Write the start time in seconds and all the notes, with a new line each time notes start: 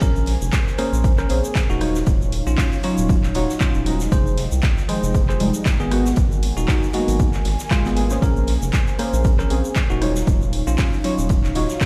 Already playing: A#3 C#4 G#4 C5 G#5
0.01 A#1 C#4 A#4 C5, kick, closed hi-hat, shaker
0.16 shaker
0.26 snare, closed hi-hat, open hi-hat
0.41 F1, shaker
0.53 kick, snare, clap, closed hi-hat, shaker
0.67 snare, shaker
0.78 A#3 C#4 G#4 A#4 C5, cross-stick, closed hi-hat, open hi-hat
0.93 A#1, shaker
1.04 kick, closed hi-hat, shaker
1.18 C#4 A#4, cross-stick, clap, shaker
1.29 A#1 A#3 C4 C#4 G#4, closed hi-hat, open hi-hat
1.44 shaker
1.55 kick, snare, clap, closed hi-hat, shaker
1.70 D#1 D#4 F#4, shaker
1.80 F#3 D#4 F4 C#5 F5, cross-stick, closed hi-hat, open hi-hat
1.95 snare, shaker
2.07 D#1, kick, closed hi-hat, shaker
2.22 shaker
2.32 closed hi-hat, open hi-hat
2.47 A#1 C#4 F4, shaker
2.58 kick, snare, clap, open hi-hat, shaker
2.72 shaker
2.83 F#3 C#4 D#4 F4 C#5, closed hi-hat, open hi-hat
2.98 D#1, closed hi-hat, shaker
3.09 kick, closed hi-hat, shaker
3.23 snare, clap, shaker
3.34 D#1 D#4 F4 F#4 C#5, snare, closed hi-hat, open hi-hat
3.49 snare, shaker
3.60 C#4 F4, kick, cross-stick, clap, shaker
3.74 D#1, shaker
3.85 F3 F#3 G#3 D#4, closed hi-hat, open hi-hat
4.00 snare, shaker
4.12 F1 F4 G#4 C5 D#5 G5, kick, closed hi-hat, shaker
4.27 shaker
4.37 snare, closed hi-hat, open hi-hat
4.52 C2, shaker
4.62 kick, snare, clap, closed hi-hat, shaker
4.78 snare, shaker
4.88 D#3 F3 G#3 D#4 G#4 C5, cross-stick, closed hi-hat, open hi-hat
5.03 F1, shaker
5.14 kick, closed hi-hat, shaker
5.29 G#4 C5, cross-stick, clap, shaker
5.40 F1 F3 G3 G#3 D#4, closed hi-hat, open hi-hat
5.54 shaker
5.65 kick, snare, clap, closed hi-hat, shaker
5.80 G#1 B3 G#4, shaker
5.90 F#3 G#3 A#3 B3 F#4 A#4 G#5, cross-stick, closed hi-hat, open hi-hat
6.05 snare, shaker
6.16 G#1, kick, closed hi-hat, shaker
6.32 shaker
6.43 closed hi-hat, open hi-hat
6.57 D#1 D#4 F#4, shaker
6.68 kick, snare, clap, open hi-hat, shaker
6.83 shaker
6.93 G#3 A#3 B3 D#4 F#4, closed hi-hat, open hi-hat
7.08 G#1, closed hi-hat, open hi-hat, shaker
7.19 kick, closed hi-hat, shaker
7.33 snare, clap, shaker
7.45 G#1, snare, closed hi-hat, open hi-hat
7.59 snare, shaker
7.71 G#3 F4, kick, cross-stick, snare, clap, closed hi-hat, shaker
7.85 G#1 G#3 A#3 B3 G#4, snare, shaker
7.96 G#3 A#3 B3 G#4, closed hi-hat, open hi-hat
8.10 A#3 C#4 G#4 C5, snare, shaker
8.22 A#1 C#4 A#4 C5, kick, closed hi-hat, shaker
8.36 shaker
8.47 snare, closed hi-hat, open hi-hat
8.62 F1, shaker
8.72 kick, snare, clap, closed hi-hat, shaker
8.87 snare, shaker
8.99 A#3 C#4 G#4 A#4 C5, cross-stick, closed hi-hat, open hi-hat
9.13 A#1, shaker
9.24 kick, closed hi-hat, shaker
9.39 C#4 A#4, cross-stick, clap, shaker
9.50 A#1 A#3 C4 C#4 G#4, closed hi-hat, open hi-hat
9.64 shaker
9.75 kick, snare, clap, closed hi-hat, shaker
9.90 D#1 D#4 F#4, shaker
10.01 F#3 D#4 F4 C#5 F5, cross-stick, closed hi-hat, open hi-hat
10.16 snare, shaker
10.27 D#1, kick, closed hi-hat, shaker
10.42 shaker
10.53 closed hi-hat, open hi-hat
10.67 A#1 C#4 F4, shaker
10.78 kick, snare, clap, open hi-hat, shaker
10.93 shaker
11.04 F#3 C#4 D#4 F4 C#5, closed hi-hat, open hi-hat
11.18 D#1, closed hi-hat, shaker
11.29 kick, closed hi-hat, shaker
11.44 snare, clap, shaker
11.55 D#1 D#4 F4 F#4 C#5, snare, closed hi-hat, open hi-hat
11.69 snare, shaker
11.81 C#4 F4, kick, cross-stick, clap, shaker